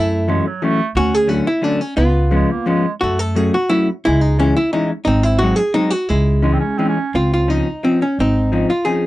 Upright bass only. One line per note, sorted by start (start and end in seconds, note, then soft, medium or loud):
0.00 0.38 F#2 medium
0.95 1.39 D2 medium
1.97 2.43 C#2 medium
3.03 3.48 F#2 medium
4.07 4.51 C#2 medium
5.07 5.51 G#1 medium
6.10 6.55 C#2 medium
7.14 7.60 C#2 medium
8.19 8.63 G#1 medium